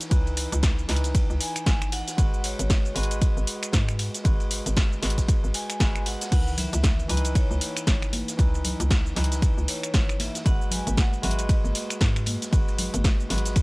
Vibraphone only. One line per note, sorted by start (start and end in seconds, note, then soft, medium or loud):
1.41 1.89 G#5 loud
1.92 2.46 F#5 loud
2.44 2.92 C#5 loud
2.96 3.95 D#5 medium
5.54 6.02 G#5 loud
6.06 6.31 F#5 loud
6.32 6.43 F#5 loud
6.58 7.11 E5 loud
7.09 7.36 D#5 medium
7.35 8.09 C#5 medium
9.68 10.21 C#5 medium
10.20 10.47 E5 medium
10.46 10.70 F#5 loud
10.72 10.96 G#5 loud
10.98 11.24 F#5 loud
11.23 11.39 E5 medium
11.39 11.87 D#5 medium